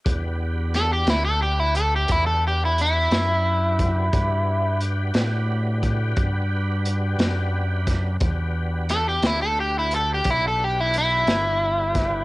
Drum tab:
HH |x-xx-xx-xx-x|x-xx-xx-xx-x|x-xx-xx-xx-x|
SD |--oo-----o--|---o-----o-o|--oo-----o-o|
BD |o-----o----o|o----oo----o|o-----o----o|